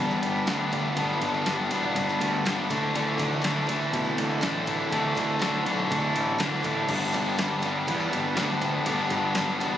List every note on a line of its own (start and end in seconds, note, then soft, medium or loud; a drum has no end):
0.00 0.19 E2 loud
0.00 0.47 G2 medium
0.00 0.23 G3 medium
0.00 0.48 G3 medium
0.00 0.48 B3 medium
0.00 0.73 B3 medium
0.00 0.50 D4 medium
0.11 tambourine medium
0.23 0.44 G1 medium
0.23 0.98 G3 medium
0.23 ride medium
0.47 0.87 D2 medium
0.47 0.96 G2 medium
0.47 0.97 D3 medium
0.47 0.74 G3 medium
0.47 0.72 B3 loud
0.47 0.73 D4 loud
0.47 snare loud
0.47 ride medium
0.47 tambourine medium
0.72 0.97 G3 medium
0.72 0.98 B3 medium
0.72 0.99 D4 medium
0.72 kick medium
0.72 ride medium
0.72 tambourine medium
0.96 1.17 G1 medium
0.96 1.71 G2 medium
0.96 1.46 D3 medium
0.96 1.46 G3 medium
0.96 1.47 B3 medium
0.96 1.49 D4 loud
0.96 kick loud
0.96 ride medium
0.96 tambourine soft
1.08 snare soft
1.08 tambourine soft
1.22 1.42 G1 medium
1.22 1.72 D4 medium
1.22 kick medium
1.22 ride medium
1.34 tambourine soft
1.46 1.67 G1 loud
1.46 1.96 D3 medium
1.46 1.73 G3 medium
1.46 1.72 B3 medium
1.46 1.72 D4 medium
1.46 snare loud
1.46 ride medium
1.46 tambourine medium
1.71 1.91 E1 medium
1.71 2.46 G3 medium
1.71 2.46 B3 medium
1.71 2.48 D4 medium
1.71 ride medium
1.71 tambourine medium
1.95 2.16 G1 medium
1.95 2.69 B3 medium
1.95 kick medium
1.95 ride medium
2.09 tambourine medium
2.20 2.40 D2 medium
2.20 2.69 G3 medium
2.20 ride medium
2.45 2.65 G1 medium
2.45 2.68 G2 loud
2.45 2.69 D3 medium
2.45 2.69 G3 medium
2.45 2.69 B3 medium
2.45 2.70 D4 medium
2.45 snare loud
2.45 ride loud
2.45 tambourine loud
2.70 2.90 D2 loud
2.70 2.94 D3 medium
2.70 2.94 E3 medium
2.70 2.96 A3 medium
2.70 2.96 D4 medium
2.70 kick loud
2.70 ride medium
2.70 tambourine medium
2.94 3.15 D2 medium
2.94 3.43 D3 medium
2.94 3.43 E3 medium
2.94 3.44 A3 loud
2.94 3.45 D4 medium
2.94 ride medium
2.94 tambourine soft
3.18 3.39 D2 medium
3.18 3.69 D4 medium
3.18 kick medium
3.18 snare soft
3.18 ride medium
3.18 tambourine medium
3.32 tambourine soft
3.42 3.64 D2 loud
3.42 4.42 D3 medium
3.42 3.71 E3 medium
3.42 3.69 A3 medium
3.42 3.67 D4 medium
3.42 snare loud
3.42 ride loud
3.42 tambourine medium
3.67 3.88 D2 medium
3.67 4.44 A3 medium
3.67 4.44 D4 medium
3.67 ride medium
3.67 tambourine medium
3.71 4.42 E3 medium
3.93 4.13 B2 loud
3.93 4.67 E4 medium
3.93 kick medium
3.93 ride medium
4.05 tambourine medium
4.18 4.38 D2 medium
4.18 4.93 D3 medium
4.18 ride medium
4.41 4.83 A1 loud
4.41 4.90 D3 medium
4.41 4.68 E3 medium
4.41 4.67 A3 medium
4.41 4.66 D4 loud
4.41 snare loud
4.41 ride medium
4.41 tambourine loud
4.66 4.91 E3 soft
4.66 4.93 A3 medium
4.66 4.94 D4 medium
4.66 5.91 E4 medium
4.66 kick medium
4.66 ride medium
4.66 tambourine medium
4.90 5.12 D2 medium
4.90 5.39 D3 medium
4.90 5.40 E3 medium
4.90 5.41 A3 medium
4.90 kick loud
4.90 ride medium
4.90 tambourine soft
4.94 5.42 D4 medium
5.03 tambourine soft
5.15 5.36 D2 medium
5.15 5.67 D4 medium
5.15 kick medium
5.15 snare soft
5.15 ride medium
5.15 tambourine medium
5.28 tambourine soft
5.39 5.61 D2 loud
5.39 5.90 D3 medium
5.39 5.67 E3 medium
5.39 5.66 A3 medium
5.39 5.65 D4 medium
5.39 snare loud
5.39 ride medium
5.39 tambourine medium
5.44 6.15 D3 medium
5.52 tambourine soft
5.65 5.86 B1 medium
5.65 6.40 E3 medium
5.65 6.41 A3 medium
5.65 6.42 D4 medium
5.65 ride medium
5.76 tambourine soft
5.89 6.10 D2 loud
5.89 kick loud
5.89 ride medium
5.89 tambourine soft
5.93 6.63 E4 medium
6.00 tambourine medium
6.13 6.35 A1 medium
6.13 6.88 D3 medium
6.13 ride medium
6.13 tambourine soft
6.25 tambourine soft
6.38 6.60 D2 loud
6.38 6.87 D3 medium
6.38 6.66 E3 loud
6.38 6.66 A3 medium
6.38 6.65 D4 medium
6.38 snare loud
6.38 ride loud
6.38 tambourine medium
6.51 tambourine soft
6.63 6.84 A1 medium
6.63 6.91 A3 medium
6.63 6.91 D4 medium
6.63 6.89 E4 medium
6.63 kick medium
6.63 ride medium
6.63 tambourine medium
6.67 6.89 E3 medium
6.75 tambourine soft
6.88 7.09 G1 medium
6.88 8.35 G2 medium
6.88 7.37 D3 medium
6.88 7.38 G3 medium
6.88 7.39 B3 loud
6.88 7.39 D4 loud
6.88 kick loud
6.88 crash medium
6.88 tambourine soft
7.00 tambourine soft
7.12 7.33 G1 medium
7.12 7.63 D4 medium
7.12 kick medium
7.12 snare soft
7.12 ride medium
7.12 tambourine medium
7.26 tambourine soft
7.38 7.60 G1 loud
7.38 7.87 D3 medium
7.38 7.63 G3 medium
7.38 7.62 B3 medium
7.38 7.62 D4 medium
7.38 snare loud
7.38 ride medium
7.38 tambourine medium
7.62 7.84 G1 medium
7.62 8.35 G3 medium
7.62 8.36 B3 medium
7.62 8.37 D4 medium
7.62 ride medium
7.62 tambourine medium
7.88 8.08 E2 loud
7.88 8.61 B3 medium
7.88 kick loud
7.88 ride medium
8.00 tambourine medium
8.13 8.34 G1 medium
8.13 8.86 G3 medium
8.13 ride medium
8.35 8.78 D2 medium
8.35 8.84 G2 medium
8.35 8.84 D3 medium
8.35 8.63 G3 medium
8.35 8.61 B3 medium
8.35 8.60 D4 medium
8.35 snare loud
8.35 ride medium
8.35 tambourine medium
8.61 8.85 G3 medium
8.61 8.86 B3 medium
8.61 8.87 D4 medium
8.61 kick medium
8.61 ride medium
8.61 tambourine medium
8.85 9.06 G1 medium
8.85 9.60 G2 medium
8.85 9.34 D3 medium
8.85 9.34 G3 loud
8.85 9.35 B3 loud
8.85 9.37 D4 loud
8.85 kick loud
8.85 ride medium
8.85 tambourine soft
9.00 tambourine soft
9.10 9.31 G1 medium
9.10 9.61 D4 medium
9.10 kick medium
9.10 ride medium
9.10 tambourine medium
9.25 tambourine soft
9.35 9.78 D3 medium
9.35 9.61 G3 medium
9.35 9.60 B3 medium
9.35 9.59 D4 medium
9.35 snare loud
9.35 ride medium
9.35 tambourine medium
9.39 9.58 G1 loud
9.59 9.78 E1 medium
9.59 9.78 G3 medium
9.59 9.78 B3 medium
9.59 9.78 D4 medium
9.59 ride medium
9.59 tambourine medium